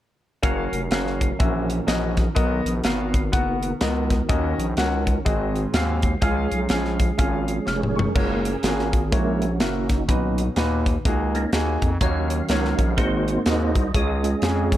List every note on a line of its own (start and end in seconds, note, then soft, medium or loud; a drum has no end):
0.43 0.68 F#1 loud
0.43 1.39 F#3 medium
0.43 0.78 C#4 medium
0.43 2.34 C#4 medium
0.43 0.78 F#4 medium
0.43 1.38 F#4 medium
0.43 5.22 A#4 medium
0.43 0.78 A#4 medium
0.43 0.78 F5 loud
0.43 kick loud
0.43 closed hi-hat medium
0.73 0.89 F1 medium
0.73 closed hi-hat medium
0.91 1.32 F#1 medium
0.91 1.27 C#4 medium
0.91 1.27 F#4 medium
0.91 1.27 A#4 medium
0.91 1.27 F5 medium
0.91 snare medium
0.91 closed hi-hat medium
1.07 snare soft
1.21 kick medium
1.21 closed hi-hat medium
1.39 1.81 A#1 medium
1.39 2.13 A#2 medium
1.39 2.35 E3 medium
1.39 1.75 C#4 medium
1.39 1.75 F#4 medium
1.39 1.75 A#4 medium
1.39 1.75 E5 medium
1.39 kick loud
1.39 closed hi-hat medium
1.70 closed hi-hat medium
1.87 2.29 A#1 medium
1.87 2.23 C#4 medium
1.87 2.23 F#4 medium
1.87 2.23 A#4 medium
1.87 2.23 D#5 medium
1.87 snare medium
1.87 closed hi-hat medium
2.17 kick medium
2.17 snare soft
2.17 closed hi-hat medium
2.35 2.61 B1 loud
2.35 3.10 B2 medium
2.35 6.18 D#3 medium
2.35 2.71 B3 medium
2.35 4.27 B3 medium
2.35 2.71 F#4 medium
2.35 2.71 A#4 medium
2.35 2.71 D#5 loud
2.35 kick loud
2.35 closed hi-hat medium
2.66 2.82 A#1 medium
2.66 closed hi-hat medium
2.84 3.35 G#1 medium
2.84 3.19 B3 medium
2.84 3.19 F#4 medium
2.84 3.20 A#4 medium
2.84 3.20 F5 medium
2.84 snare medium
2.84 closed hi-hat medium
3.14 kick medium
3.14 closed hi-hat medium
3.32 3.74 F#1 medium
3.32 3.68 B3 medium
3.32 3.68 F#4 medium
3.32 3.68 A#4 medium
3.32 3.68 F#5 medium
3.32 kick loud
3.32 closed hi-hat medium
3.63 closed hi-hat medium
3.81 4.22 C#2 medium
3.81 4.16 B3 medium
3.81 4.16 F#4 medium
3.81 4.16 A#4 medium
3.81 4.16 D#5 medium
3.81 snare loud
3.81 closed hi-hat medium
4.10 kick medium
4.10 snare soft
4.10 closed hi-hat medium
4.29 4.55 D#2 loud
4.29 5.03 D#3 medium
4.29 4.64 C#4 medium
4.29 5.25 C#4 medium
4.29 4.64 F#4 medium
4.29 4.64 A#4 medium
4.29 4.64 D#5 loud
4.29 kick loud
4.29 closed hi-hat medium
4.59 4.75 A#1 medium
4.59 closed hi-hat medium
4.77 5.19 C#2 medium
4.77 5.13 C#4 medium
4.77 5.13 F#4 medium
4.77 5.13 A#4 medium
4.77 5.13 F#5 medium
4.77 snare loud
4.77 closed hi-hat medium
5.07 kick medium
5.07 closed hi-hat medium
5.25 5.67 G#1 loud
5.25 5.99 G#2 medium
5.25 6.20 G#3 medium
5.25 5.61 C4 medium
5.25 5.61 F#4 medium
5.25 5.61 G#4 medium
5.25 5.61 D#5 medium
5.25 kick loud
5.25 closed hi-hat medium
5.56 closed hi-hat medium
5.74 6.15 D#2 loud
5.74 6.09 C4 medium
5.74 6.09 F#4 medium
5.74 6.09 G#4 medium
5.74 6.09 F5 medium
5.74 snare loud
5.74 closed hi-hat medium
6.02 kick medium
6.02 closed hi-hat medium
6.21 6.47 C#2 loud
6.21 6.96 C#3 medium
6.21 8.13 F3 medium
6.21 8.13 G#3 medium
6.21 7.95 C#4 medium
6.21 6.57 C#4 loud
6.21 6.57 F4 medium
6.21 7.95 G#4 medium
6.21 6.57 G#4 medium
6.21 6.58 F5 loud
6.21 kick loud
6.21 closed hi-hat medium
6.52 6.68 B1 medium
6.52 closed hi-hat medium
6.69 7.12 A#1 loud
6.69 7.05 C#4 medium
6.69 7.06 F4 medium
6.69 7.06 G#4 medium
6.69 7.06 F5 medium
6.69 snare medium
6.69 closed hi-hat medium
6.85 snare soft
7.00 kick medium
7.00 closed hi-hat medium
7.18 7.60 G#1 loud
7.18 7.53 C#4 medium
7.18 7.54 F4 medium
7.18 7.54 G#4 medium
7.18 7.54 F5 medium
7.18 kick loud
7.18 closed hi-hat medium
7.48 closed hi-hat medium
7.66 8.08 F1 medium
7.66 7.97 C#5 medium
7.66 7.95 F6 medium
7.66 snare medium
7.83 mid tom medium
7.95 8.89 C#4 medium
7.95 8.89 G#4 medium
7.95 8.62 A#4 medium
7.95 8.42 C#6 medium
7.95 floor tom medium
8.15 8.56 F#1 loud
8.15 8.50 G#3 soft
8.15 8.50 A#3 medium
8.15 8.50 A#3 soft
8.15 8.50 F4 medium
8.15 8.50 F#4 medium
8.15 8.51 C#5 medium
8.15 8.51 F5 medium
8.15 kick loud
8.15 crash medium
8.45 closed hi-hat medium
8.63 9.14 G#1 medium
8.63 8.99 A#3 medium
8.63 8.99 F4 medium
8.63 8.99 F#4 medium
8.63 8.99 G#4 medium
8.63 8.94 A#4 medium
8.63 snare medium
8.63 closed hi-hat medium
8.79 snare soft
8.93 9.12 G#4 medium
8.93 kick medium
8.93 closed hi-hat medium
9.11 9.61 A#1 loud
9.11 9.86 A#2 medium
9.11 9.47 G#3 medium
9.11 9.47 A#3 soft
9.11 9.47 A#3 medium
9.11 9.41 C#4 medium
9.11 9.47 E4 medium
9.11 9.47 F#4 medium
9.11 9.42 A#4 medium
9.11 9.47 C#5 medium
9.11 kick loud
9.11 closed hi-hat medium
9.42 10.05 C#4 medium
9.42 9.88 F#4 medium
9.42 closed hi-hat medium
9.60 10.10 F#1 loud
9.60 9.95 A#3 medium
9.60 9.95 E4 medium
9.60 9.95 F#4 medium
9.60 9.95 A#4 medium
9.60 snare loud
9.60 closed hi-hat medium
9.89 10.08 D#4 medium
9.89 10.52 F#4 medium
9.89 kick medium
9.89 snare soft
9.89 closed hi-hat medium
10.08 10.49 B1 loud
10.08 10.43 A#2 medium
10.08 10.82 B2 medium
10.08 10.43 F#3 medium
10.08 10.43 C#4 soft
10.08 10.43 D#4 medium
10.08 10.44 D#4 medium
10.08 10.44 F#4 medium
10.08 10.44 B4 medium
10.08 kick loud
10.08 closed hi-hat medium
10.38 closed hi-hat medium
10.56 10.98 D#2 medium
10.56 10.91 A#2 medium
10.56 10.91 D#4 medium
10.56 10.92 F#4 medium
10.56 10.92 B4 medium
10.56 snare medium
10.56 closed hi-hat medium
10.86 kick medium
10.86 closed hi-hat medium
11.05 11.46 C#2 medium
11.05 11.40 A#3 medium
11.05 11.40 D#4 medium
11.05 11.41 F#4 medium
11.05 11.41 G#4 medium
11.05 kick loud
11.05 closed hi-hat medium
11.35 11.51 A#3 soft
11.35 11.51 C#4 soft
11.35 11.52 D#4 medium
11.35 closed hi-hat medium
11.53 11.78 D#2 medium
11.53 11.88 A#3 medium
11.53 11.88 D#4 medium
11.53 11.88 F#4 medium
11.53 11.88 G#4 medium
11.53 snare loud
11.53 closed hi-hat medium
11.82 11.98 F2 medium
11.82 kick medium
11.82 closed hi-hat medium
12.01 12.42 D#2 medium
12.01 12.75 D#3 medium
12.01 12.93 F#3 medium
12.01 12.36 A#3 medium
12.01 12.48 C#4 soft
12.01 12.36 D#4 medium
12.01 12.36 F#4 medium
12.01 12.37 C#5 medium
12.01 12.94 F5 medium
12.01 kick loud
12.01 closed hi-hat medium
12.30 closed hi-hat medium
12.49 12.74 C#2 medium
12.49 12.84 A#3 medium
12.49 12.94 C#4 medium
12.49 12.85 D#4 medium
12.49 12.94 F#4 medium
12.49 12.85 F#4 medium
12.49 12.94 A#4 medium
12.49 12.85 C#5 medium
12.49 snare medium
12.49 closed hi-hat medium
12.65 snare soft
12.78 12.99 A#1 medium
12.78 kick medium
12.78 closed hi-hat medium
12.97 13.39 G#1 loud
12.97 13.71 G#2 medium
12.97 13.33 G#3 medium
12.97 13.71 A#3 medium
12.97 13.71 C4 soft
12.97 13.90 D#4 medium
12.97 13.33 D#4 medium
12.97 13.46 F#4 medium
12.97 13.33 F#4 medium
12.97 13.42 C5 medium
12.97 13.33 C5 medium
12.97 kick loud
12.97 closed hi-hat medium
13.28 closed hi-hat medium
13.46 13.77 D#2 medium
13.46 13.81 G#3 medium
13.46 13.81 D#4 medium
13.46 13.81 F#4 medium
13.46 13.91 F#4 medium
13.46 13.81 A#4 medium
13.46 13.91 C5 medium
13.46 13.93 D#5 medium
13.46 snare loud
13.46 closed hi-hat medium
13.75 13.91 C2 medium
13.75 kick medium
13.75 closed hi-hat medium
13.94 14.35 C#2 loud
13.94 14.68 C#3 medium
13.94 14.29 G#3 medium
13.94 14.29 C#4 medium
13.94 14.29 F4 medium
13.94 14.77 G#4 medium
13.94 14.30 C#5 medium
13.94 14.68 D#5 medium
13.94 kick loud
13.94 closed hi-hat medium
14.23 14.77 G#3 soft
14.23 14.77 C#4 soft
14.23 14.77 F4 medium
14.23 closed hi-hat medium
14.42 14.77 F2 medium
14.42 14.77 G#3 medium
14.42 14.77 C#4 medium
14.42 14.77 F4 medium
14.42 14.77 G#4 medium
14.42 snare loud
14.42 closed hi-hat medium
14.71 14.77 C#5 medium
14.71 kick medium
14.71 closed hi-hat medium